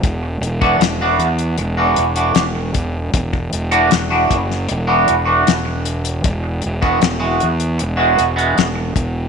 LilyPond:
<<
  \new Staff \with { instrumentName = "Clean electric guitar" } { \time 4/4 \key b \dorian \tempo 4 = 77 r8. <e b d' fis'>16 r16 <e b d' fis'>16 r8. <e b d' fis'>16 r16 <e b d' fis'>16 r4 | r8. <e b d' fis'>16 r16 <e b d' fis'>16 r8. <e b d' fis'>16 r16 <e b d' fis'>16 r4 | r8. <e gis b fis'>16 r16 <e gis b fis'>16 r8. <e gis b fis'>16 r16 <e gis b fis'>16 r4 | }
  \new Staff \with { instrumentName = "Fingered electric bass" } { \clef bass \time 4/4 \key b \dorian e,,8 e,,8 e,,8 e,8 e,,8 e,,8 e,,8 e,,8 | e,,8 e,,8 e,,8 fis,,8 e,,8 e,,8 e,,4 | e,,8 e,,8 e,,8 e,8 e,,8 e,,8 e,,8 e,,8 | }
  \new DrumStaff \with { instrumentName = "Drums" } \drummode { \time 4/4 <hh bd>8 hh16 bd16 <hh sn>8 hh16 hh16 hh8 hh16 hh16 <hh sn>8 <hh bd>8 | <hh bd>16 bd16 hh16 hh16 <hh sn>8 <hh bd>16 sn16 hh8 hh8 <hh sn>8 hh16 hh16 | <hh bd>8 hh16 bd16 <hh sn>8 hh16 hh16 hh8 hh16 hh16 <hh sn>8 <hh bd>8 | }
>>